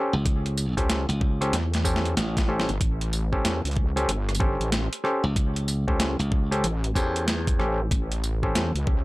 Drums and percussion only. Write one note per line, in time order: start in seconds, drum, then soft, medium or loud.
0.26 kick loud
0.26 closed hi-hat medium
0.46 closed hi-hat soft
0.57 tambourine medium
0.77 kick medium
0.77 closed hi-hat soft
0.90 snare loud
0.90 closed hi-hat medium
1.10 closed hi-hat soft
1.21 kick loud
1.42 cross-stick soft
1.42 closed hi-hat medium
1.53 snare medium
1.53 closed hi-hat medium
1.74 snare medium
1.74 closed hi-hat soft
1.85 kick medium
1.85 tambourine medium
1.96 snare medium
2.05 closed hi-hat soft
2.17 snare medium
2.17 closed hi-hat medium
2.37 kick loud
2.37 snare loud
2.37 closed hi-hat medium
2.60 snare loud
2.69 closed hi-hat soft
2.81 kick loud
2.81 closed hi-hat medium
3.01 closed hi-hat soft
3.13 tambourine medium
3.33 kick medium
3.45 snare loud
3.45 closed hi-hat medium
3.65 closed hi-hat soft
3.67 closed hi-hat soft
3.71 closed hi-hat soft
3.73 closed hi-hat soft
3.75 kick loud
3.75 closed hi-hat soft
3.97 closed hi-hat medium
4.09 closed hi-hat medium
4.29 cross-stick medium
4.29 closed hi-hat soft
4.35 tambourine medium
4.40 kick loud
4.61 closed hi-hat soft
4.72 snare loud
4.72 closed hi-hat medium
4.93 closed hi-hat medium
5.05 cross-stick medium
5.36 kick loud
5.36 closed hi-hat medium
5.56 closed hi-hat soft
5.68 tambourine medium
5.88 kick medium
6.00 snare loud
6.00 closed hi-hat medium
6.20 closed hi-hat soft
6.32 kick loud
6.52 cross-stick soft
6.52 closed hi-hat medium
6.64 closed hi-hat medium
6.84 closed hi-hat soft
6.96 kick medium
6.96 tambourine medium
7.16 closed hi-hat soft
7.28 snare loud
7.28 closed hi-hat medium
7.47 kick loud
7.47 closed hi-hat medium
7.60 cross-stick medium
7.91 kick loud
7.91 closed hi-hat medium
8.12 closed hi-hat soft
8.24 tambourine medium
8.43 kick medium
8.55 snare loud
8.55 closed hi-hat medium
8.76 closed hi-hat soft
8.87 kick loud